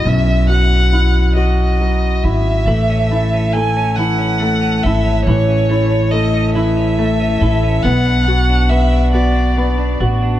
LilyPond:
<<
  \new Staff \with { instrumentName = "Violin" } { \time 6/8 \key a \lydian \tempo 4. = 46 e''8 fis''4 dis''4 e''8~ | e''4 gis''8 fis''4 e''8 | cis''4 dis''8 e''4. | fis''4 e''8 d''4 r8 | }
  \new Staff \with { instrumentName = "Grand piano" } { \time 6/8 \key a \lydian <fis, fis e' fis'>8 fis8 e'8 fis'8 fis8 e'8 | a8 e'8 a8 e'8 a8 e'8 | e8 e'8 a8 e'8 a8 e'8 | b8 fis'8 b8 fis'8 b8 fis'8 | }
  \new Staff \with { instrumentName = "Clean electric guitar" } { \time 6/8 \key a \lydian r2. | e16 cis'16 a16 cis'16 a'16 cis'16 e16 cis'16 a16 cis'16 a'16 cis'16 | e16 cis'16 a16 cis'16 a'16 cis'16 e16 cis'16 a16 cis'16 a'16 cis'16 | b16 d'16 b16 d'16 fis'16 d'16 b16 d'16 b16 d'16 fis'16 d'16 | }
  \new Staff \with { instrumentName = "Upright bass" } { \clef bass \time 6/8 \key a \lydian b,,2~ b,,8 gis,,8 | a,,2~ a,,8 gis,,8 | a,,2~ a,,8 a,,8 | b,,2~ b,,8 a,,8 | }
>>